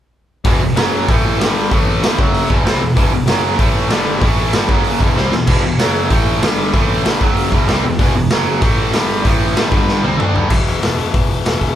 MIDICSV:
0, 0, Header, 1, 4, 480
1, 0, Start_track
1, 0, Key_signature, 1, "minor"
1, 0, Tempo, 314136
1, 697, Time_signature, 4, 2, 24, 8
1, 17957, End_track
2, 0, Start_track
2, 0, Title_t, "Distorted electric guitar"
2, 0, Program_c, 0, 30
2, 681, Note_on_c, 0, 40, 102
2, 695, Note_on_c, 0, 47, 104
2, 701, Note_on_c, 0, 52, 107
2, 911, Note_off_c, 0, 40, 0
2, 922, Note_off_c, 0, 47, 0
2, 930, Note_on_c, 0, 40, 63
2, 931, Note_off_c, 0, 52, 0
2, 940, Note_on_c, 0, 47, 70
2, 1125, Note_off_c, 0, 40, 0
2, 1130, Note_off_c, 0, 47, 0
2, 1152, Note_on_c, 0, 42, 81
2, 1166, Note_on_c, 0, 49, 104
2, 1171, Note_on_c, 0, 54, 113
2, 1637, Note_off_c, 0, 42, 0
2, 1644, Note_off_c, 0, 49, 0
2, 1646, Note_off_c, 0, 54, 0
2, 1651, Note_on_c, 0, 45, 91
2, 1666, Note_on_c, 0, 52, 95
2, 1674, Note_on_c, 0, 57, 113
2, 2125, Note_on_c, 0, 43, 93
2, 2126, Note_off_c, 0, 45, 0
2, 2134, Note_off_c, 0, 52, 0
2, 2134, Note_on_c, 0, 50, 93
2, 2138, Note_off_c, 0, 57, 0
2, 2148, Note_on_c, 0, 55, 104
2, 2603, Note_off_c, 0, 43, 0
2, 2607, Note_off_c, 0, 50, 0
2, 2614, Note_off_c, 0, 55, 0
2, 2616, Note_on_c, 0, 45, 102
2, 2626, Note_on_c, 0, 57, 94
2, 2627, Note_on_c, 0, 52, 103
2, 3083, Note_on_c, 0, 43, 100
2, 3088, Note_off_c, 0, 45, 0
2, 3093, Note_off_c, 0, 57, 0
2, 3094, Note_off_c, 0, 52, 0
2, 3095, Note_on_c, 0, 50, 89
2, 3108, Note_on_c, 0, 55, 94
2, 3335, Note_off_c, 0, 43, 0
2, 3335, Note_on_c, 0, 42, 89
2, 3340, Note_off_c, 0, 50, 0
2, 3340, Note_on_c, 0, 49, 98
2, 3351, Note_off_c, 0, 55, 0
2, 3351, Note_on_c, 0, 54, 99
2, 3807, Note_off_c, 0, 42, 0
2, 3810, Note_off_c, 0, 49, 0
2, 3814, Note_on_c, 0, 40, 106
2, 3816, Note_off_c, 0, 54, 0
2, 3822, Note_on_c, 0, 47, 102
2, 3830, Note_on_c, 0, 52, 104
2, 4032, Note_off_c, 0, 47, 0
2, 4038, Note_on_c, 0, 48, 90
2, 4045, Note_off_c, 0, 52, 0
2, 4047, Note_off_c, 0, 40, 0
2, 4051, Note_on_c, 0, 55, 108
2, 4062, Note_on_c, 0, 60, 110
2, 4279, Note_off_c, 0, 48, 0
2, 4285, Note_off_c, 0, 55, 0
2, 4291, Note_off_c, 0, 60, 0
2, 4292, Note_on_c, 0, 40, 71
2, 4296, Note_on_c, 0, 47, 79
2, 4485, Note_off_c, 0, 40, 0
2, 4487, Note_off_c, 0, 47, 0
2, 4513, Note_on_c, 0, 40, 105
2, 4527, Note_on_c, 0, 47, 99
2, 4528, Note_on_c, 0, 52, 98
2, 4740, Note_off_c, 0, 40, 0
2, 4747, Note_off_c, 0, 47, 0
2, 4758, Note_on_c, 0, 40, 67
2, 4764, Note_off_c, 0, 52, 0
2, 4765, Note_on_c, 0, 47, 69
2, 4958, Note_off_c, 0, 40, 0
2, 4962, Note_off_c, 0, 47, 0
2, 4980, Note_on_c, 0, 42, 95
2, 4993, Note_on_c, 0, 49, 91
2, 4999, Note_on_c, 0, 54, 106
2, 5446, Note_off_c, 0, 49, 0
2, 5452, Note_on_c, 0, 45, 101
2, 5460, Note_off_c, 0, 54, 0
2, 5466, Note_on_c, 0, 52, 113
2, 5469, Note_off_c, 0, 42, 0
2, 5470, Note_on_c, 0, 57, 92
2, 5937, Note_on_c, 0, 43, 93
2, 5938, Note_off_c, 0, 45, 0
2, 5944, Note_off_c, 0, 52, 0
2, 5945, Note_on_c, 0, 50, 97
2, 5950, Note_on_c, 0, 55, 104
2, 5954, Note_off_c, 0, 57, 0
2, 6415, Note_off_c, 0, 50, 0
2, 6415, Note_on_c, 0, 45, 89
2, 6425, Note_off_c, 0, 55, 0
2, 6425, Note_on_c, 0, 52, 114
2, 6428, Note_off_c, 0, 43, 0
2, 6434, Note_on_c, 0, 57, 99
2, 6907, Note_off_c, 0, 45, 0
2, 6911, Note_off_c, 0, 52, 0
2, 6912, Note_on_c, 0, 43, 90
2, 6916, Note_off_c, 0, 57, 0
2, 6930, Note_on_c, 0, 50, 86
2, 6931, Note_on_c, 0, 55, 94
2, 7146, Note_off_c, 0, 43, 0
2, 7152, Note_on_c, 0, 42, 82
2, 7155, Note_off_c, 0, 50, 0
2, 7161, Note_off_c, 0, 55, 0
2, 7161, Note_on_c, 0, 49, 102
2, 7168, Note_on_c, 0, 54, 94
2, 7629, Note_off_c, 0, 42, 0
2, 7635, Note_off_c, 0, 49, 0
2, 7635, Note_on_c, 0, 40, 93
2, 7639, Note_off_c, 0, 54, 0
2, 7641, Note_on_c, 0, 47, 99
2, 7645, Note_on_c, 0, 52, 104
2, 7873, Note_off_c, 0, 47, 0
2, 7877, Note_off_c, 0, 40, 0
2, 7879, Note_on_c, 0, 48, 98
2, 7881, Note_off_c, 0, 52, 0
2, 7894, Note_on_c, 0, 55, 100
2, 7900, Note_on_c, 0, 60, 95
2, 8118, Note_off_c, 0, 48, 0
2, 8118, Note_on_c, 0, 40, 69
2, 8126, Note_off_c, 0, 55, 0
2, 8129, Note_off_c, 0, 60, 0
2, 8130, Note_on_c, 0, 47, 79
2, 8317, Note_off_c, 0, 40, 0
2, 8323, Note_off_c, 0, 47, 0
2, 8353, Note_on_c, 0, 40, 90
2, 8368, Note_on_c, 0, 47, 115
2, 8377, Note_on_c, 0, 52, 107
2, 8581, Note_off_c, 0, 40, 0
2, 8590, Note_off_c, 0, 47, 0
2, 8600, Note_on_c, 0, 40, 70
2, 8607, Note_off_c, 0, 52, 0
2, 8608, Note_on_c, 0, 47, 81
2, 8798, Note_off_c, 0, 40, 0
2, 8802, Note_off_c, 0, 47, 0
2, 8844, Note_on_c, 0, 42, 90
2, 8852, Note_on_c, 0, 49, 87
2, 8858, Note_on_c, 0, 54, 90
2, 9308, Note_off_c, 0, 49, 0
2, 9314, Note_on_c, 0, 45, 101
2, 9319, Note_off_c, 0, 54, 0
2, 9320, Note_off_c, 0, 42, 0
2, 9325, Note_on_c, 0, 52, 97
2, 9340, Note_on_c, 0, 57, 118
2, 9780, Note_on_c, 0, 43, 93
2, 9792, Note_off_c, 0, 45, 0
2, 9796, Note_off_c, 0, 52, 0
2, 9799, Note_on_c, 0, 50, 99
2, 9803, Note_on_c, 0, 55, 110
2, 9809, Note_off_c, 0, 57, 0
2, 10267, Note_off_c, 0, 50, 0
2, 10269, Note_off_c, 0, 43, 0
2, 10273, Note_on_c, 0, 45, 88
2, 10279, Note_off_c, 0, 55, 0
2, 10285, Note_on_c, 0, 52, 96
2, 10292, Note_on_c, 0, 57, 110
2, 10752, Note_off_c, 0, 45, 0
2, 10753, Note_on_c, 0, 43, 92
2, 10758, Note_on_c, 0, 50, 100
2, 10761, Note_off_c, 0, 52, 0
2, 10765, Note_off_c, 0, 57, 0
2, 10775, Note_on_c, 0, 55, 106
2, 10992, Note_off_c, 0, 43, 0
2, 10998, Note_off_c, 0, 50, 0
2, 10998, Note_on_c, 0, 42, 78
2, 11006, Note_off_c, 0, 55, 0
2, 11013, Note_on_c, 0, 49, 93
2, 11023, Note_on_c, 0, 54, 95
2, 11468, Note_off_c, 0, 42, 0
2, 11474, Note_on_c, 0, 40, 81
2, 11485, Note_off_c, 0, 49, 0
2, 11489, Note_off_c, 0, 54, 0
2, 11491, Note_on_c, 0, 47, 93
2, 11496, Note_on_c, 0, 52, 99
2, 11706, Note_off_c, 0, 47, 0
2, 11713, Note_on_c, 0, 48, 98
2, 11716, Note_off_c, 0, 40, 0
2, 11718, Note_off_c, 0, 52, 0
2, 11724, Note_on_c, 0, 55, 96
2, 11734, Note_on_c, 0, 60, 105
2, 11953, Note_on_c, 0, 40, 67
2, 11956, Note_off_c, 0, 48, 0
2, 11961, Note_off_c, 0, 55, 0
2, 11965, Note_on_c, 0, 47, 78
2, 11966, Note_off_c, 0, 60, 0
2, 12155, Note_off_c, 0, 40, 0
2, 12161, Note_off_c, 0, 47, 0
2, 12202, Note_on_c, 0, 40, 89
2, 12212, Note_on_c, 0, 47, 102
2, 12219, Note_on_c, 0, 52, 121
2, 12441, Note_off_c, 0, 40, 0
2, 12445, Note_off_c, 0, 47, 0
2, 12449, Note_off_c, 0, 52, 0
2, 12461, Note_on_c, 0, 40, 68
2, 12461, Note_on_c, 0, 47, 78
2, 12649, Note_off_c, 0, 40, 0
2, 12649, Note_off_c, 0, 47, 0
2, 12690, Note_on_c, 0, 42, 89
2, 12703, Note_on_c, 0, 49, 99
2, 12710, Note_on_c, 0, 54, 103
2, 13148, Note_off_c, 0, 49, 0
2, 13155, Note_on_c, 0, 45, 105
2, 13163, Note_off_c, 0, 54, 0
2, 13165, Note_off_c, 0, 42, 0
2, 13170, Note_on_c, 0, 52, 114
2, 13178, Note_on_c, 0, 57, 127
2, 13631, Note_on_c, 0, 43, 100
2, 13635, Note_off_c, 0, 45, 0
2, 13641, Note_off_c, 0, 52, 0
2, 13641, Note_on_c, 0, 50, 111
2, 13647, Note_on_c, 0, 55, 101
2, 13649, Note_off_c, 0, 57, 0
2, 14107, Note_off_c, 0, 50, 0
2, 14113, Note_on_c, 0, 45, 97
2, 14115, Note_off_c, 0, 55, 0
2, 14116, Note_off_c, 0, 43, 0
2, 14121, Note_on_c, 0, 52, 105
2, 14128, Note_on_c, 0, 57, 107
2, 14584, Note_off_c, 0, 45, 0
2, 14586, Note_on_c, 0, 43, 94
2, 14590, Note_on_c, 0, 50, 99
2, 14595, Note_off_c, 0, 52, 0
2, 14601, Note_on_c, 0, 55, 108
2, 14605, Note_off_c, 0, 57, 0
2, 14783, Note_off_c, 0, 43, 0
2, 14793, Note_off_c, 0, 50, 0
2, 14801, Note_on_c, 0, 43, 82
2, 14812, Note_on_c, 0, 50, 104
2, 14815, Note_off_c, 0, 55, 0
2, 14833, Note_on_c, 0, 55, 96
2, 15302, Note_off_c, 0, 43, 0
2, 15305, Note_off_c, 0, 55, 0
2, 15307, Note_off_c, 0, 50, 0
2, 15314, Note_on_c, 0, 48, 96
2, 15323, Note_on_c, 0, 55, 86
2, 15335, Note_on_c, 0, 60, 106
2, 15527, Note_off_c, 0, 48, 0
2, 15533, Note_on_c, 0, 50, 86
2, 15541, Note_off_c, 0, 55, 0
2, 15547, Note_on_c, 0, 57, 98
2, 15548, Note_off_c, 0, 60, 0
2, 15554, Note_on_c, 0, 62, 106
2, 15778, Note_on_c, 0, 43, 104
2, 15781, Note_off_c, 0, 50, 0
2, 15795, Note_off_c, 0, 57, 0
2, 15799, Note_off_c, 0, 62, 0
2, 15799, Note_on_c, 0, 50, 115
2, 15803, Note_on_c, 0, 55, 120
2, 16003, Note_off_c, 0, 43, 0
2, 16009, Note_on_c, 0, 40, 102
2, 16023, Note_off_c, 0, 55, 0
2, 16024, Note_off_c, 0, 50, 0
2, 16029, Note_on_c, 0, 52, 94
2, 16031, Note_on_c, 0, 47, 94
2, 16491, Note_off_c, 0, 47, 0
2, 16493, Note_off_c, 0, 40, 0
2, 16499, Note_on_c, 0, 40, 73
2, 16506, Note_off_c, 0, 52, 0
2, 16509, Note_on_c, 0, 47, 78
2, 16512, Note_on_c, 0, 52, 100
2, 16735, Note_off_c, 0, 52, 0
2, 16739, Note_off_c, 0, 47, 0
2, 16741, Note_on_c, 0, 52, 95
2, 16757, Note_on_c, 0, 47, 80
2, 16761, Note_off_c, 0, 40, 0
2, 16767, Note_on_c, 0, 40, 70
2, 16990, Note_off_c, 0, 47, 0
2, 16994, Note_off_c, 0, 40, 0
2, 17000, Note_on_c, 0, 40, 92
2, 17006, Note_off_c, 0, 52, 0
2, 17008, Note_on_c, 0, 47, 93
2, 17012, Note_on_c, 0, 52, 105
2, 17479, Note_off_c, 0, 47, 0
2, 17488, Note_off_c, 0, 40, 0
2, 17494, Note_on_c, 0, 40, 76
2, 17498, Note_on_c, 0, 47, 91
2, 17504, Note_off_c, 0, 52, 0
2, 17510, Note_on_c, 0, 52, 94
2, 17713, Note_off_c, 0, 47, 0
2, 17717, Note_off_c, 0, 52, 0
2, 17723, Note_on_c, 0, 52, 90
2, 17727, Note_off_c, 0, 40, 0
2, 17731, Note_on_c, 0, 47, 85
2, 17733, Note_on_c, 0, 40, 77
2, 17957, Note_off_c, 0, 40, 0
2, 17957, Note_off_c, 0, 47, 0
2, 17957, Note_off_c, 0, 52, 0
2, 17957, End_track
3, 0, Start_track
3, 0, Title_t, "Picked electric bass"
3, 0, Program_c, 1, 34
3, 680, Note_on_c, 1, 28, 92
3, 905, Note_off_c, 1, 28, 0
3, 915, Note_on_c, 1, 28, 74
3, 1142, Note_off_c, 1, 28, 0
3, 1151, Note_on_c, 1, 30, 94
3, 1609, Note_off_c, 1, 30, 0
3, 1658, Note_on_c, 1, 33, 90
3, 2103, Note_off_c, 1, 33, 0
3, 2141, Note_on_c, 1, 31, 106
3, 2585, Note_off_c, 1, 31, 0
3, 2617, Note_on_c, 1, 33, 100
3, 3062, Note_off_c, 1, 33, 0
3, 3084, Note_on_c, 1, 31, 91
3, 3312, Note_off_c, 1, 31, 0
3, 3342, Note_on_c, 1, 30, 88
3, 3785, Note_off_c, 1, 30, 0
3, 3816, Note_on_c, 1, 28, 88
3, 4039, Note_off_c, 1, 28, 0
3, 4069, Note_on_c, 1, 36, 92
3, 4285, Note_off_c, 1, 36, 0
3, 4310, Note_on_c, 1, 28, 90
3, 4526, Note_off_c, 1, 28, 0
3, 4537, Note_on_c, 1, 28, 94
3, 4758, Note_off_c, 1, 28, 0
3, 4786, Note_on_c, 1, 28, 90
3, 5003, Note_off_c, 1, 28, 0
3, 5013, Note_on_c, 1, 30, 87
3, 5460, Note_off_c, 1, 30, 0
3, 5488, Note_on_c, 1, 33, 95
3, 5936, Note_off_c, 1, 33, 0
3, 5968, Note_on_c, 1, 31, 107
3, 6417, Note_off_c, 1, 31, 0
3, 6442, Note_on_c, 1, 33, 85
3, 6893, Note_off_c, 1, 33, 0
3, 6935, Note_on_c, 1, 31, 96
3, 7157, Note_off_c, 1, 31, 0
3, 7167, Note_on_c, 1, 30, 97
3, 7616, Note_off_c, 1, 30, 0
3, 7649, Note_on_c, 1, 28, 89
3, 7873, Note_off_c, 1, 28, 0
3, 7883, Note_on_c, 1, 36, 94
3, 8088, Note_off_c, 1, 36, 0
3, 8097, Note_on_c, 1, 28, 82
3, 8336, Note_off_c, 1, 28, 0
3, 8369, Note_on_c, 1, 28, 95
3, 8589, Note_off_c, 1, 28, 0
3, 8598, Note_on_c, 1, 28, 85
3, 8828, Note_off_c, 1, 28, 0
3, 8837, Note_on_c, 1, 30, 85
3, 9290, Note_off_c, 1, 30, 0
3, 9330, Note_on_c, 1, 33, 86
3, 9777, Note_off_c, 1, 33, 0
3, 9803, Note_on_c, 1, 31, 96
3, 10253, Note_off_c, 1, 31, 0
3, 10299, Note_on_c, 1, 33, 87
3, 10742, Note_off_c, 1, 33, 0
3, 10782, Note_on_c, 1, 31, 95
3, 11001, Note_off_c, 1, 31, 0
3, 11017, Note_on_c, 1, 30, 97
3, 11462, Note_off_c, 1, 30, 0
3, 11498, Note_on_c, 1, 28, 92
3, 11719, Note_off_c, 1, 28, 0
3, 11726, Note_on_c, 1, 36, 97
3, 11953, Note_off_c, 1, 36, 0
3, 11970, Note_on_c, 1, 28, 87
3, 12195, Note_off_c, 1, 28, 0
3, 12213, Note_on_c, 1, 28, 99
3, 12436, Note_off_c, 1, 28, 0
3, 12448, Note_on_c, 1, 28, 90
3, 12674, Note_off_c, 1, 28, 0
3, 12690, Note_on_c, 1, 30, 87
3, 13139, Note_off_c, 1, 30, 0
3, 13171, Note_on_c, 1, 33, 92
3, 13619, Note_off_c, 1, 33, 0
3, 13642, Note_on_c, 1, 31, 103
3, 14095, Note_off_c, 1, 31, 0
3, 14137, Note_on_c, 1, 33, 94
3, 14583, Note_off_c, 1, 33, 0
3, 14607, Note_on_c, 1, 31, 92
3, 14834, Note_off_c, 1, 31, 0
3, 14849, Note_on_c, 1, 31, 98
3, 15299, Note_off_c, 1, 31, 0
3, 15333, Note_on_c, 1, 36, 80
3, 15558, Note_off_c, 1, 36, 0
3, 15581, Note_on_c, 1, 38, 101
3, 15791, Note_off_c, 1, 38, 0
3, 15800, Note_on_c, 1, 31, 101
3, 16031, Note_off_c, 1, 31, 0
3, 16043, Note_on_c, 1, 28, 86
3, 16199, Note_off_c, 1, 28, 0
3, 16308, Note_on_c, 1, 28, 90
3, 16455, Note_off_c, 1, 28, 0
3, 16551, Note_on_c, 1, 28, 78
3, 16849, Note_off_c, 1, 28, 0
3, 17021, Note_on_c, 1, 28, 88
3, 17171, Note_off_c, 1, 28, 0
3, 17266, Note_on_c, 1, 28, 76
3, 17415, Note_off_c, 1, 28, 0
3, 17499, Note_on_c, 1, 28, 89
3, 17650, Note_off_c, 1, 28, 0
3, 17741, Note_on_c, 1, 28, 97
3, 17892, Note_off_c, 1, 28, 0
3, 17957, End_track
4, 0, Start_track
4, 0, Title_t, "Drums"
4, 681, Note_on_c, 9, 46, 64
4, 686, Note_on_c, 9, 36, 126
4, 834, Note_off_c, 9, 46, 0
4, 838, Note_off_c, 9, 36, 0
4, 1171, Note_on_c, 9, 46, 62
4, 1181, Note_on_c, 9, 38, 117
4, 1324, Note_off_c, 9, 46, 0
4, 1333, Note_off_c, 9, 38, 0
4, 1658, Note_on_c, 9, 36, 124
4, 1669, Note_on_c, 9, 46, 77
4, 1811, Note_off_c, 9, 36, 0
4, 1822, Note_off_c, 9, 46, 0
4, 2153, Note_on_c, 9, 46, 65
4, 2163, Note_on_c, 9, 38, 113
4, 2306, Note_off_c, 9, 46, 0
4, 2315, Note_off_c, 9, 38, 0
4, 2619, Note_on_c, 9, 46, 66
4, 2621, Note_on_c, 9, 36, 110
4, 2771, Note_off_c, 9, 46, 0
4, 2773, Note_off_c, 9, 36, 0
4, 3105, Note_on_c, 9, 46, 61
4, 3114, Note_on_c, 9, 38, 125
4, 3257, Note_off_c, 9, 46, 0
4, 3267, Note_off_c, 9, 38, 0
4, 3341, Note_on_c, 9, 36, 114
4, 3493, Note_off_c, 9, 36, 0
4, 3582, Note_on_c, 9, 46, 72
4, 3735, Note_off_c, 9, 46, 0
4, 3823, Note_on_c, 9, 36, 95
4, 3976, Note_off_c, 9, 36, 0
4, 4068, Note_on_c, 9, 46, 56
4, 4077, Note_on_c, 9, 38, 105
4, 4221, Note_off_c, 9, 46, 0
4, 4230, Note_off_c, 9, 38, 0
4, 4536, Note_on_c, 9, 36, 127
4, 4546, Note_on_c, 9, 46, 65
4, 4689, Note_off_c, 9, 36, 0
4, 4699, Note_off_c, 9, 46, 0
4, 5001, Note_on_c, 9, 46, 67
4, 5010, Note_on_c, 9, 38, 119
4, 5153, Note_off_c, 9, 46, 0
4, 5163, Note_off_c, 9, 38, 0
4, 5486, Note_on_c, 9, 36, 118
4, 5487, Note_on_c, 9, 46, 66
4, 5639, Note_off_c, 9, 36, 0
4, 5640, Note_off_c, 9, 46, 0
4, 5959, Note_on_c, 9, 46, 60
4, 5968, Note_on_c, 9, 38, 114
4, 6112, Note_off_c, 9, 46, 0
4, 6121, Note_off_c, 9, 38, 0
4, 6441, Note_on_c, 9, 36, 115
4, 6443, Note_on_c, 9, 46, 70
4, 6594, Note_off_c, 9, 36, 0
4, 6596, Note_off_c, 9, 46, 0
4, 6918, Note_on_c, 9, 46, 66
4, 6927, Note_on_c, 9, 38, 122
4, 7071, Note_off_c, 9, 46, 0
4, 7080, Note_off_c, 9, 38, 0
4, 7163, Note_on_c, 9, 36, 109
4, 7316, Note_off_c, 9, 36, 0
4, 7399, Note_on_c, 9, 46, 73
4, 7551, Note_off_c, 9, 46, 0
4, 7647, Note_on_c, 9, 36, 98
4, 7799, Note_off_c, 9, 36, 0
4, 7905, Note_on_c, 9, 38, 66
4, 8058, Note_off_c, 9, 38, 0
4, 8131, Note_on_c, 9, 38, 77
4, 8284, Note_off_c, 9, 38, 0
4, 8361, Note_on_c, 9, 49, 114
4, 8368, Note_on_c, 9, 36, 114
4, 8514, Note_off_c, 9, 49, 0
4, 8521, Note_off_c, 9, 36, 0
4, 8849, Note_on_c, 9, 46, 67
4, 8858, Note_on_c, 9, 38, 119
4, 9002, Note_off_c, 9, 46, 0
4, 9011, Note_off_c, 9, 38, 0
4, 9328, Note_on_c, 9, 36, 114
4, 9330, Note_on_c, 9, 46, 66
4, 9481, Note_off_c, 9, 36, 0
4, 9483, Note_off_c, 9, 46, 0
4, 9815, Note_on_c, 9, 46, 69
4, 9824, Note_on_c, 9, 38, 110
4, 9968, Note_off_c, 9, 46, 0
4, 9977, Note_off_c, 9, 38, 0
4, 10293, Note_on_c, 9, 36, 112
4, 10297, Note_on_c, 9, 46, 70
4, 10446, Note_off_c, 9, 36, 0
4, 10450, Note_off_c, 9, 46, 0
4, 10776, Note_on_c, 9, 46, 72
4, 10785, Note_on_c, 9, 38, 122
4, 10929, Note_off_c, 9, 46, 0
4, 10938, Note_off_c, 9, 38, 0
4, 11016, Note_on_c, 9, 36, 107
4, 11169, Note_off_c, 9, 36, 0
4, 11256, Note_on_c, 9, 46, 75
4, 11409, Note_off_c, 9, 46, 0
4, 11492, Note_on_c, 9, 36, 97
4, 11645, Note_off_c, 9, 36, 0
4, 11738, Note_on_c, 9, 46, 54
4, 11747, Note_on_c, 9, 38, 108
4, 11891, Note_off_c, 9, 46, 0
4, 11900, Note_off_c, 9, 38, 0
4, 12211, Note_on_c, 9, 36, 111
4, 12215, Note_on_c, 9, 46, 59
4, 12364, Note_off_c, 9, 36, 0
4, 12367, Note_off_c, 9, 46, 0
4, 12684, Note_on_c, 9, 46, 63
4, 12694, Note_on_c, 9, 38, 124
4, 12837, Note_off_c, 9, 46, 0
4, 12846, Note_off_c, 9, 38, 0
4, 13170, Note_on_c, 9, 36, 127
4, 13181, Note_on_c, 9, 46, 69
4, 13323, Note_off_c, 9, 36, 0
4, 13334, Note_off_c, 9, 46, 0
4, 13649, Note_on_c, 9, 46, 64
4, 13658, Note_on_c, 9, 38, 97
4, 13801, Note_off_c, 9, 46, 0
4, 13811, Note_off_c, 9, 38, 0
4, 14135, Note_on_c, 9, 36, 116
4, 14143, Note_on_c, 9, 46, 67
4, 14288, Note_off_c, 9, 36, 0
4, 14296, Note_off_c, 9, 46, 0
4, 14615, Note_on_c, 9, 46, 70
4, 14624, Note_on_c, 9, 38, 118
4, 14768, Note_off_c, 9, 46, 0
4, 14777, Note_off_c, 9, 38, 0
4, 14849, Note_on_c, 9, 36, 110
4, 15002, Note_off_c, 9, 36, 0
4, 15103, Note_on_c, 9, 38, 77
4, 15256, Note_off_c, 9, 38, 0
4, 15348, Note_on_c, 9, 48, 64
4, 15500, Note_off_c, 9, 48, 0
4, 15585, Note_on_c, 9, 45, 98
4, 15737, Note_off_c, 9, 45, 0
4, 15825, Note_on_c, 9, 43, 79
4, 15978, Note_off_c, 9, 43, 0
4, 16044, Note_on_c, 9, 49, 121
4, 16052, Note_on_c, 9, 36, 118
4, 16197, Note_off_c, 9, 49, 0
4, 16205, Note_off_c, 9, 36, 0
4, 16309, Note_on_c, 9, 46, 54
4, 16461, Note_off_c, 9, 46, 0
4, 16542, Note_on_c, 9, 46, 77
4, 16551, Note_on_c, 9, 38, 102
4, 16694, Note_off_c, 9, 46, 0
4, 16704, Note_off_c, 9, 38, 0
4, 16803, Note_on_c, 9, 46, 50
4, 16955, Note_off_c, 9, 46, 0
4, 17021, Note_on_c, 9, 46, 80
4, 17024, Note_on_c, 9, 36, 127
4, 17174, Note_off_c, 9, 46, 0
4, 17177, Note_off_c, 9, 36, 0
4, 17276, Note_on_c, 9, 46, 52
4, 17429, Note_off_c, 9, 46, 0
4, 17506, Note_on_c, 9, 46, 83
4, 17515, Note_on_c, 9, 38, 114
4, 17658, Note_off_c, 9, 46, 0
4, 17668, Note_off_c, 9, 38, 0
4, 17746, Note_on_c, 9, 36, 81
4, 17747, Note_on_c, 9, 46, 53
4, 17898, Note_off_c, 9, 36, 0
4, 17900, Note_off_c, 9, 46, 0
4, 17957, End_track
0, 0, End_of_file